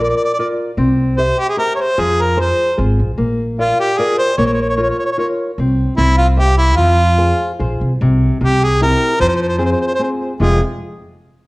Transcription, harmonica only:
0, 0, Header, 1, 2, 480
1, 0, Start_track
1, 0, Key_signature, -4, "minor"
1, 0, Tempo, 400267
1, 938, Time_signature, 3, 2, 24, 8
1, 13756, End_track
2, 0, Start_track
2, 0, Title_t, "Harmonica"
2, 0, Program_c, 0, 22
2, 36, Note_on_c, 0, 74, 64
2, 102, Note_off_c, 0, 74, 0
2, 109, Note_on_c, 0, 74, 50
2, 190, Note_off_c, 0, 74, 0
2, 197, Note_on_c, 0, 74, 67
2, 286, Note_off_c, 0, 74, 0
2, 294, Note_on_c, 0, 74, 61
2, 381, Note_off_c, 0, 74, 0
2, 399, Note_on_c, 0, 74, 65
2, 460, Note_off_c, 0, 74, 0
2, 467, Note_on_c, 0, 74, 54
2, 557, Note_off_c, 0, 74, 0
2, 1414, Note_on_c, 0, 72, 95
2, 1670, Note_on_c, 0, 67, 98
2, 1688, Note_off_c, 0, 72, 0
2, 1781, Note_off_c, 0, 67, 0
2, 1788, Note_on_c, 0, 68, 78
2, 1891, Note_off_c, 0, 68, 0
2, 1899, Note_on_c, 0, 70, 88
2, 2066, Note_off_c, 0, 70, 0
2, 2097, Note_on_c, 0, 73, 61
2, 2164, Note_on_c, 0, 72, 89
2, 2182, Note_off_c, 0, 73, 0
2, 2395, Note_on_c, 0, 68, 90
2, 2413, Note_off_c, 0, 72, 0
2, 2652, Note_on_c, 0, 70, 84
2, 2670, Note_off_c, 0, 68, 0
2, 2870, Note_off_c, 0, 70, 0
2, 2884, Note_on_c, 0, 72, 87
2, 3323, Note_off_c, 0, 72, 0
2, 4313, Note_on_c, 0, 65, 85
2, 4540, Note_off_c, 0, 65, 0
2, 4553, Note_on_c, 0, 67, 87
2, 4770, Note_on_c, 0, 68, 85
2, 4788, Note_off_c, 0, 67, 0
2, 5010, Note_off_c, 0, 68, 0
2, 5018, Note_on_c, 0, 72, 94
2, 5241, Note_off_c, 0, 72, 0
2, 5250, Note_on_c, 0, 73, 82
2, 5341, Note_off_c, 0, 73, 0
2, 5353, Note_on_c, 0, 73, 63
2, 5434, Note_off_c, 0, 73, 0
2, 5441, Note_on_c, 0, 73, 61
2, 5527, Note_off_c, 0, 73, 0
2, 5534, Note_on_c, 0, 73, 61
2, 5615, Note_off_c, 0, 73, 0
2, 5627, Note_on_c, 0, 73, 65
2, 5705, Note_off_c, 0, 73, 0
2, 5710, Note_on_c, 0, 73, 59
2, 5779, Note_off_c, 0, 73, 0
2, 5786, Note_on_c, 0, 73, 63
2, 5869, Note_off_c, 0, 73, 0
2, 5876, Note_on_c, 0, 73, 50
2, 5965, Note_off_c, 0, 73, 0
2, 5986, Note_on_c, 0, 73, 57
2, 6056, Note_off_c, 0, 73, 0
2, 6063, Note_on_c, 0, 73, 65
2, 6128, Note_off_c, 0, 73, 0
2, 6135, Note_on_c, 0, 73, 65
2, 6217, Note_off_c, 0, 73, 0
2, 6224, Note_on_c, 0, 73, 60
2, 6314, Note_off_c, 0, 73, 0
2, 7159, Note_on_c, 0, 64, 91
2, 7392, Note_off_c, 0, 64, 0
2, 7409, Note_on_c, 0, 65, 99
2, 7516, Note_off_c, 0, 65, 0
2, 7649, Note_on_c, 0, 67, 94
2, 7878, Note_off_c, 0, 67, 0
2, 7891, Note_on_c, 0, 64, 85
2, 8106, Note_off_c, 0, 64, 0
2, 8113, Note_on_c, 0, 65, 106
2, 9053, Note_off_c, 0, 65, 0
2, 10122, Note_on_c, 0, 67, 90
2, 10356, Note_on_c, 0, 68, 103
2, 10374, Note_off_c, 0, 67, 0
2, 10580, Note_off_c, 0, 68, 0
2, 10587, Note_on_c, 0, 70, 94
2, 11020, Note_off_c, 0, 70, 0
2, 11036, Note_on_c, 0, 72, 116
2, 11122, Note_off_c, 0, 72, 0
2, 11137, Note_on_c, 0, 72, 77
2, 11212, Note_off_c, 0, 72, 0
2, 11219, Note_on_c, 0, 72, 73
2, 11287, Note_off_c, 0, 72, 0
2, 11295, Note_on_c, 0, 72, 70
2, 11366, Note_off_c, 0, 72, 0
2, 11373, Note_on_c, 0, 72, 72
2, 11462, Note_off_c, 0, 72, 0
2, 11483, Note_on_c, 0, 72, 52
2, 11563, Note_off_c, 0, 72, 0
2, 11576, Note_on_c, 0, 72, 66
2, 11647, Note_off_c, 0, 72, 0
2, 11654, Note_on_c, 0, 72, 51
2, 11740, Note_off_c, 0, 72, 0
2, 11764, Note_on_c, 0, 72, 64
2, 11831, Note_off_c, 0, 72, 0
2, 11838, Note_on_c, 0, 72, 66
2, 11918, Note_off_c, 0, 72, 0
2, 11926, Note_on_c, 0, 72, 79
2, 12006, Note_off_c, 0, 72, 0
2, 12032, Note_on_c, 0, 72, 51
2, 12107, Note_off_c, 0, 72, 0
2, 12479, Note_on_c, 0, 68, 73
2, 12709, Note_off_c, 0, 68, 0
2, 13756, End_track
0, 0, End_of_file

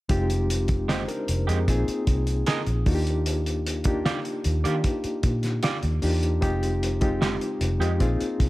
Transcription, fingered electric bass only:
0, 0, Header, 1, 3, 480
1, 0, Start_track
1, 0, Tempo, 790931
1, 56, Time_signature, 4, 2, 24, 8
1, 5155, End_track
2, 0, Start_track
2, 0, Title_t, "Fingered electric bass"
2, 0, Program_c, 0, 33
2, 61, Note_on_c, 0, 29, 92
2, 635, Note_off_c, 0, 29, 0
2, 782, Note_on_c, 0, 29, 78
2, 887, Note_off_c, 0, 29, 0
2, 902, Note_on_c, 0, 41, 78
2, 1007, Note_off_c, 0, 41, 0
2, 1022, Note_on_c, 0, 34, 90
2, 1127, Note_off_c, 0, 34, 0
2, 1259, Note_on_c, 0, 36, 77
2, 1473, Note_off_c, 0, 36, 0
2, 1620, Note_on_c, 0, 34, 77
2, 1726, Note_off_c, 0, 34, 0
2, 1740, Note_on_c, 0, 39, 82
2, 2490, Note_off_c, 0, 39, 0
2, 2704, Note_on_c, 0, 39, 90
2, 2808, Note_off_c, 0, 39, 0
2, 2823, Note_on_c, 0, 51, 74
2, 2928, Note_off_c, 0, 51, 0
2, 3179, Note_on_c, 0, 46, 82
2, 3393, Note_off_c, 0, 46, 0
2, 3540, Note_on_c, 0, 39, 83
2, 3646, Note_off_c, 0, 39, 0
2, 3662, Note_on_c, 0, 40, 80
2, 3875, Note_off_c, 0, 40, 0
2, 3900, Note_on_c, 0, 29, 93
2, 4474, Note_off_c, 0, 29, 0
2, 4618, Note_on_c, 0, 29, 79
2, 4725, Note_off_c, 0, 29, 0
2, 4738, Note_on_c, 0, 41, 75
2, 4845, Note_off_c, 0, 41, 0
2, 4859, Note_on_c, 0, 34, 85
2, 4966, Note_off_c, 0, 34, 0
2, 5098, Note_on_c, 0, 36, 80
2, 5155, Note_off_c, 0, 36, 0
2, 5155, End_track
3, 0, Start_track
3, 0, Title_t, "Muted fingered electric bass strokes"
3, 3061, Note_on_c, 9, 29, 43
3, 3122, Note_off_c, 9, 29, 0
3, 4983, Note_on_c, 9, 29, 43
3, 5044, Note_off_c, 9, 29, 0
3, 5155, End_track
0, 0, End_of_file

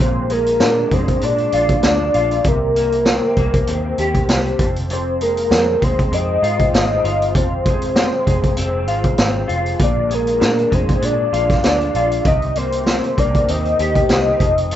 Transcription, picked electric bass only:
0, 0, Header, 1, 2, 480
1, 0, Start_track
1, 0, Tempo, 612870
1, 1913, Time_signature, 4, 2, 24, 8
1, 11557, End_track
2, 0, Start_track
2, 0, Title_t, "Picked electric bass"
2, 0, Program_c, 0, 34
2, 0, Note_on_c, 0, 34, 88
2, 475, Note_on_c, 0, 46, 81
2, 487, Note_off_c, 0, 34, 0
2, 666, Note_off_c, 0, 46, 0
2, 714, Note_on_c, 0, 41, 82
2, 906, Note_off_c, 0, 41, 0
2, 961, Note_on_c, 0, 46, 94
2, 1150, Note_off_c, 0, 46, 0
2, 1198, Note_on_c, 0, 34, 72
2, 1388, Note_off_c, 0, 34, 0
2, 1441, Note_on_c, 0, 38, 90
2, 1630, Note_off_c, 0, 38, 0
2, 1683, Note_on_c, 0, 34, 76
2, 1871, Note_off_c, 0, 34, 0
2, 1919, Note_on_c, 0, 36, 92
2, 2498, Note_off_c, 0, 36, 0
2, 2639, Note_on_c, 0, 36, 95
2, 2829, Note_off_c, 0, 36, 0
2, 2881, Note_on_c, 0, 39, 81
2, 3070, Note_off_c, 0, 39, 0
2, 3121, Note_on_c, 0, 39, 81
2, 3310, Note_off_c, 0, 39, 0
2, 3355, Note_on_c, 0, 36, 89
2, 3547, Note_off_c, 0, 36, 0
2, 3597, Note_on_c, 0, 29, 84
2, 4313, Note_on_c, 0, 41, 85
2, 4325, Note_off_c, 0, 29, 0
2, 4506, Note_off_c, 0, 41, 0
2, 4559, Note_on_c, 0, 39, 74
2, 4749, Note_off_c, 0, 39, 0
2, 4791, Note_on_c, 0, 41, 100
2, 4985, Note_off_c, 0, 41, 0
2, 5033, Note_on_c, 0, 44, 85
2, 5226, Note_off_c, 0, 44, 0
2, 5275, Note_on_c, 0, 32, 89
2, 5467, Note_off_c, 0, 32, 0
2, 5515, Note_on_c, 0, 31, 81
2, 5758, Note_off_c, 0, 31, 0
2, 5758, Note_on_c, 0, 29, 86
2, 6338, Note_off_c, 0, 29, 0
2, 6477, Note_on_c, 0, 29, 88
2, 6668, Note_off_c, 0, 29, 0
2, 6715, Note_on_c, 0, 29, 84
2, 6951, Note_off_c, 0, 29, 0
2, 6951, Note_on_c, 0, 32, 76
2, 7145, Note_off_c, 0, 32, 0
2, 7195, Note_on_c, 0, 32, 84
2, 7387, Note_off_c, 0, 32, 0
2, 7436, Note_on_c, 0, 29, 84
2, 7628, Note_off_c, 0, 29, 0
2, 7673, Note_on_c, 0, 34, 95
2, 8160, Note_on_c, 0, 46, 86
2, 8172, Note_off_c, 0, 34, 0
2, 8350, Note_off_c, 0, 46, 0
2, 8397, Note_on_c, 0, 41, 82
2, 8588, Note_off_c, 0, 41, 0
2, 8633, Note_on_c, 0, 46, 100
2, 8826, Note_off_c, 0, 46, 0
2, 8871, Note_on_c, 0, 34, 78
2, 9065, Note_off_c, 0, 34, 0
2, 9112, Note_on_c, 0, 38, 93
2, 9306, Note_off_c, 0, 38, 0
2, 9357, Note_on_c, 0, 34, 78
2, 9549, Note_off_c, 0, 34, 0
2, 9597, Note_on_c, 0, 36, 93
2, 10178, Note_off_c, 0, 36, 0
2, 10323, Note_on_c, 0, 36, 96
2, 10512, Note_off_c, 0, 36, 0
2, 10561, Note_on_c, 0, 39, 86
2, 10751, Note_off_c, 0, 39, 0
2, 10803, Note_on_c, 0, 39, 83
2, 10992, Note_off_c, 0, 39, 0
2, 11041, Note_on_c, 0, 36, 86
2, 11231, Note_off_c, 0, 36, 0
2, 11281, Note_on_c, 0, 29, 84
2, 11557, Note_off_c, 0, 29, 0
2, 11557, End_track
0, 0, End_of_file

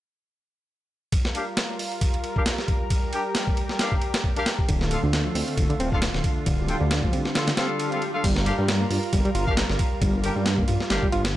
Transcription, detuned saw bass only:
0, 0, Header, 1, 2, 480
1, 0, Start_track
1, 0, Key_signature, -2, "minor"
1, 0, Tempo, 444444
1, 1220, Time_signature, 4, 2, 24, 8
1, 12276, End_track
2, 0, Start_track
2, 0, Title_t, "Detuned saw bass"
2, 0, Program_c, 0, 39
2, 5061, Note_on_c, 0, 26, 97
2, 5362, Note_off_c, 0, 26, 0
2, 5434, Note_on_c, 0, 38, 92
2, 5723, Note_off_c, 0, 38, 0
2, 5779, Note_on_c, 0, 38, 88
2, 5868, Note_off_c, 0, 38, 0
2, 6019, Note_on_c, 0, 26, 87
2, 6109, Note_off_c, 0, 26, 0
2, 6260, Note_on_c, 0, 26, 91
2, 6562, Note_off_c, 0, 26, 0
2, 6633, Note_on_c, 0, 26, 84
2, 6704, Note_off_c, 0, 26, 0
2, 6979, Note_on_c, 0, 26, 104
2, 7281, Note_off_c, 0, 26, 0
2, 7354, Note_on_c, 0, 38, 93
2, 7643, Note_off_c, 0, 38, 0
2, 7700, Note_on_c, 0, 38, 85
2, 7789, Note_off_c, 0, 38, 0
2, 8899, Note_on_c, 0, 31, 101
2, 9201, Note_off_c, 0, 31, 0
2, 9272, Note_on_c, 0, 43, 87
2, 9562, Note_off_c, 0, 43, 0
2, 9618, Note_on_c, 0, 43, 86
2, 9708, Note_off_c, 0, 43, 0
2, 9859, Note_on_c, 0, 31, 85
2, 9948, Note_off_c, 0, 31, 0
2, 10096, Note_on_c, 0, 31, 93
2, 10400, Note_off_c, 0, 31, 0
2, 10473, Note_on_c, 0, 31, 87
2, 10544, Note_off_c, 0, 31, 0
2, 10818, Note_on_c, 0, 31, 97
2, 11121, Note_off_c, 0, 31, 0
2, 11192, Note_on_c, 0, 43, 88
2, 11482, Note_off_c, 0, 43, 0
2, 11543, Note_on_c, 0, 43, 86
2, 11630, Note_off_c, 0, 43, 0
2, 11780, Note_on_c, 0, 31, 90
2, 11869, Note_off_c, 0, 31, 0
2, 12020, Note_on_c, 0, 31, 95
2, 12276, Note_off_c, 0, 31, 0
2, 12276, End_track
0, 0, End_of_file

